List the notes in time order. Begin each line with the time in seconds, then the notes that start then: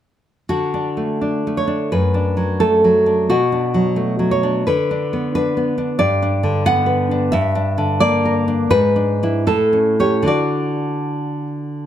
0.49 D3 F#4
0.74 D4
0.97 A3
1.21 D4
1.47 A3
1.57 C#5
1.67 D4
1.92 F#2 B4
2.14 D4
2.37 F#3
2.60 A3 A4
2.84 F#3
3.06 D4
3.30 B2 F#4
3.52 D4
3.74 F#3
3.96 A3
4.19 F#3
4.31 C#5
4.43 D4
4.67 D3 B4
4.91 D4
5.13 B3
5.35 D4 B4
5.57 B3
5.78 D4
5.99 G2 D5
6.22 D4
6.43 D3
6.66 B3 F#5
6.86 B4
7.11 D4
7.32 G2 E5
7.55 D4
7.78 D3
8.00 A#3 D5
8.25 A#4
8.48 D4
8.70 G#2 B4
8.96 D4
9.23 D4 E4
9.47 A2 A4
9.73 C#4
10.00 C#4 G4 C#5
10.22 D3 D4 F#4
10.28 D5